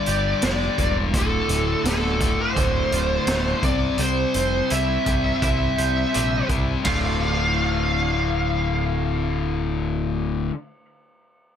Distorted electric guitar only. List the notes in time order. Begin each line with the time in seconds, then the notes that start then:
Already playing: G2 D3 G3
0.43 G2 D3 G3
0.79 G2 D3 G3
1.14 D2 A2 D3
1.86 D2 A2 D3
2.21 D2 A2 D3
2.56 D2 A2 D3
3.28 D2 A2 D3
3.63 C3 G3 C4
3.99 C3 G3 C4
4.69 C3 G3 C4
5.04 C3 G3 C4
5.41 C3 G3 C4
6.12 C3 G3 C4
6.47 C3 G3 C4
6.82 D2 A2
6.87 D3